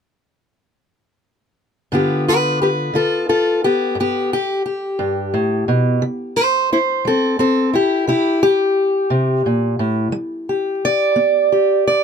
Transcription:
steel-string acoustic guitar
1.92 G2 D3 B3 F4 G4
2.28 G4 B4
2.62 G4 B4
2.94 D3 F4 A4
3.29 F4 A4
3.64 B3 G4
3.95 G2
4.00 B3 G4
4.33 G4
4.66 G4
4.99 G2
5.34 A2
5.68 B2
6.02 C3
6.36 E4 C5
6.72 E4 C5
7.05 G3 C4 A4
7.39 C4 A4
7.74 E4 G4
8.07 C3 E4 G4
8.43 G4
9.10 C3
9.46 A#2
9.79 A2
10.12 G3
10.49 G4
10.85 D5
11.16 B3
11.52 G4
11.87 D5

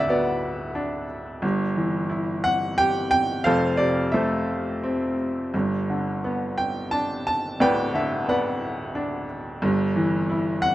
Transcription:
upright piano
Already playing: D1 D2 D3 B3 D4 B4 D5 F#5 G5
0.00 E5
0.09 B3 F#4 B4 D5
0.75 D4
1.42 G1 G2
1.76 E3
2.09 E4
2.44 F#5
2.78 G4 G5
3.11 G5
3.44 F1 F2 A4 C5 F5
3.77 C3 D5
4.12 A3 A4 C5 E5
4.83 C4
5.54 G1 G2
5.90 D3
6.24 B3
6.58 G5
6.91 D4 A5
7.27 A5
7.60 D1 D2 B4 D5 G5
7.94 D3 E5
8.27 B3 B4 D5 F#5
8.95 D4
9.62 G1 G2
9.96 E3
10.29 E4
10.62 F#5

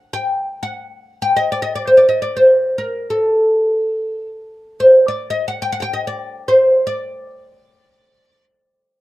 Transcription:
oud
Already playing: F#5
0.13 G5
0.63 F#5
1.22 G5
1.37 D#5
1.52 D5
1.62 D#5
1.75 D5
1.87 C5
1.97 D5
2.09 D#5
2.22 D5
2.37 C5
2.78 A#4
3.10 A4
4.80 C5
5.08 D5
5.30 D#5
5.48 F#5
5.62 G5
5.72 F#5
5.80 F#5 G5
5.93 D#5
6.07 D5
6.48 C5
6.87 D5

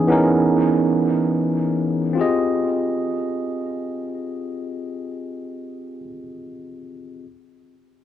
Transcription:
tine electric piano
Already playing: E3 B3 C#4 D#4 G#4
0.07 E3 B3 C#4 D#4
0.12 A#4
2.13 C4 F4
2.18 G4 G#4 D#5

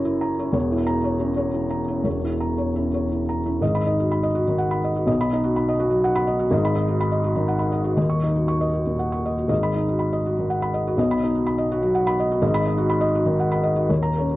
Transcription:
felt piano
Already playing: F#1 F#2 C#4 E4 C#5 A#5
0.05 E4
0.21 A#5
0.39 C#4 E4
0.53 E1 E2 C#5
0.72 E4
0.87 A#5
1.04 C#5
1.20 C#4 E4
1.37 C#5
1.54 E4
1.71 A#5
1.88 C#4 E4
2.04 E1 E2 C#5
2.24 E4
2.40 A#5
2.58 C#5
2.75 C#4 E4
2.94 C#5
3.12 E4
3.29 A#5
3.46 C#4 E4
3.61 G#1 G#2 D#5
3.75 B5
3.86 D#4 D#5
4.00 F#4
4.11 B5
4.23 D#5
4.35 F#4
4.48 D#3
4.58 F#5
4.71 B5
4.84 D#5
4.96 F#4
5.06 B1 B2 D#5
5.21 B5
5.33 D#4 D#5
5.44 F#4
5.56 B5
5.69 D#5
5.79 F#4
5.90 F#3
6.04 F#5
6.16 B5
6.27 D#5
6.39 F#4
6.51 G#1 G#2 D#5
6.65 B5
6.75 D#4 D#5
6.88 F#4
7.01 B5
7.12 D#5
7.24 F#4
7.36 D#3
7.48 F#5
7.59 B5
7.72 D#5
7.84 F#4
7.96 D#1 D#2 D#5
8.10 C#6
8.23 D#4 D#5
8.36 F#4
8.48 C#6
8.61 D#5
8.74 F#4
8.87 A#2
8.99 F#5
9.12 C#6
9.26 D#5
9.38 F#4
9.48 G#1 G#2 D#5
9.63 B5
9.75 D#4 D#5
9.89 F#4
9.99 B5
10.13 D#5
10.26 F#4
10.39 D#3
10.50 F#5
10.62 B5
10.74 D#5
10.87 F#4
10.97 B1 B2 D#5
11.11 B5
11.24 D#4 D#5
11.35 F#4
11.47 B5
11.58 D#5
11.71 F#4
11.82 F#3
11.95 F#5
12.07 B5
12.20 D#5
12.31 F#4
12.42 G#1 G#2 D#5
12.54 B5
12.67 D#4 D#5
12.78 F#4
12.90 B5
13.01 D#5
13.15 F#4
13.26 D#3
13.40 F#5
13.52 B5
13.63 D#5
13.76 F#4
13.89 D#1 D#2 C#5
14.03 A#5
14.18 C#4 C#5
14.31 F#4

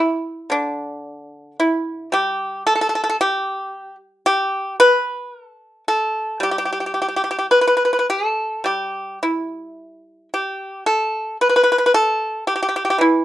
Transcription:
pipa
0.00 E4
0.50 D3 D4
1.60 E4
2.12 G3 G4
2.67 A4
2.75 A4
2.81 A4
2.89 A4
2.95 A4
3.04 A4
3.09 A4
3.21 G4
4.26 G4
4.80 B4
5.34 A#4
5.46 A4
5.88 A4
6.40 G3 G4
6.51 G4
6.58 G4
6.65 G4
6.72 G4
6.80 G4
6.86 G4
6.94 G4
7.02 G4
7.08 G4
7.16 G4
7.31 G4
7.39 G4
7.51 B4
7.61 B4
7.67 B4
7.77 B4
7.85 B4
7.93 B4
7.99 B4
8.10 A4
8.64 G3 G4
9.23 E4
10.34 G4
10.86 A4
11.41 B4
11.49 B4
11.56 B4
11.63 B4
11.72 B4
11.78 B4
11.86 B4
11.94 A4
12.47 G4
12.56 G4
12.63 G4
12.69 G4
12.76 G4
12.85 G4
12.90 G4
12.98 E3 E4

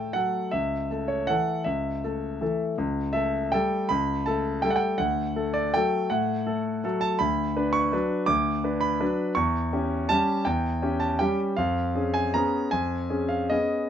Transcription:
grand piano
Already playing: A2 A3 A4 G5 A5
0.13 F#3 A3 A4 F#5
0.51 C#2 E5
0.90 A3 A4
1.08 C#5
1.27 E3 A3 A4 F#5
1.64 C#2 E5
2.04 A3 A4
2.41 E3 A3 A4
2.78 C#2
3.13 A3 A4 E5
3.52 G3 A3 A4 G5
3.89 C#2 B5
4.26 A3 A4 A5
4.62 G3 A3 A4 G5
4.70 F#5
4.76 G5
4.98 D2 F#5
5.36 A3 A4
5.54 D5
5.74 F#3 A3 A4 G5
6.10 A2 F#5
6.46 A3 A4
6.84 F#3 A3 A4
7.01 A5
7.19 D2 B5
7.56 D4 B4
7.73 C#6
7.92 F#3 D4 B4
8.26 D2 D6
8.64 D4 B4
8.81 B5
9.00 F#3 D4 B4
9.35 E2 C#6
9.73 C#4 G4
10.09 G3 C#4 G4 A5
10.45 E2 G5
10.82 C#4 G4
11.00 A5
11.19 G3 C#4 G4 G5
11.57 F2 F5
11.95 C#4 G#4
12.14 G#5
12.34 B3 C#4 G#4 A#5
12.71 F2 G#5
13.10 C#4 G#4
13.29 F5
13.50 B3 C#4 G#4 D#5

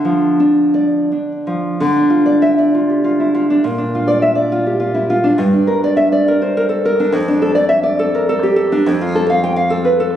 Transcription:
nylon-string guitar
Already playing: D3
0.05 F3
0.40 D4
0.74 D5
1.12 D4
1.47 F3
1.80 D3
1.96 D4
2.10 F4
2.26 D5
2.42 E5
2.58 D5
2.75 F4
2.90 G4
3.04 F4
3.20 E4
3.35 F4
3.50 D4
3.64 A#2
3.78 D4
3.95 F4
4.08 D5
4.22 E5
4.35 D5
4.52 F4
4.66 G4
4.80 F4
4.94 E4
5.10 F4
5.24 D4
5.38 G2
5.53 D4
5.67 A#4
5.84 D5
5.97 E5
6.12 D5
6.28 A#4
6.42 C5
6.57 A#4
6.69 A4
6.85 A#4
7.00 D4
7.12 F2
7.28 D4
7.42 A4
7.55 D5
7.69 E5
7.83 D5
7.99 A4
8.15 A#4
8.29 A4
8.43 G4
8.56 A4
8.72 D4
8.86 F2
9.02 F4
9.15 A4
9.30 F5
9.44 G5
9.56 F5
9.70 A4
9.85 B4
10.00 A4

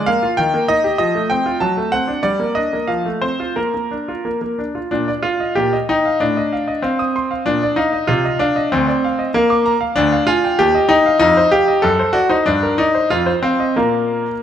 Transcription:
grand piano
0.06 A#3 F5
0.23 F4
0.37 D#3 G5
0.54 A#3
0.68 D#4 D#5
0.84 G4
0.98 F3 D#5
1.15 A3
1.30 C4 G5
1.46 F4
1.60 F#3 A5
1.77 A3
1.92 C4 F#5
2.08 D4
2.23 G3 D5
2.40 A#3
2.55 D4 D#5
2.73 A#3
2.87 F3 F5
3.05 A3
3.22 C4 C5
3.40 F4
3.56 A#3 A#4
3.74 A#3
3.91 D4
4.08 F4
4.25 A#3
4.41 A#3
4.58 D4
4.75 F4
4.91 A#2 D4
5.08 D5
5.22 F4 F5
5.40 D#5
5.55 A#2 G4
5.73 D#5
5.89 D#4 G5
6.06 F5
6.20 A2 D4
6.37 D#5
6.53 F5
6.68 D#5
6.82 C4 F5
6.99 D#6
7.16 C6
7.31 F5
7.46 A#2 D4
7.63 D5
7.76 D#4 F5
7.93 D#5
8.07 C3 F4
8.25 D#5
8.39 D4 F5
8.56 D#5
8.72 D2 C4
8.88 D5
9.04 F5
9.19 D#5
9.34 A#3 F5
9.50 D6
9.66 A#5
9.81 F5
9.96 D2 D4
10.12 F5
10.27 F4 G#5
10.45 G5
10.59 D#2 G4
10.75 D#5
10.89 D#4 G5
11.06 F5
11.19 F2 D#4
11.37 C5
11.52 G4 F5
11.68 D#5
11.82 F#2 A4
11.99 C5
12.13 F#4 D5
12.29 D#4 C5
12.46 G2 D4
12.63 A#4
12.78 D#4 D5
12.95 C5
13.10 F2 F4
13.26 C5
13.43 C4 F5
13.60 D#5
13.76 A#2 A#3 F5 A#5

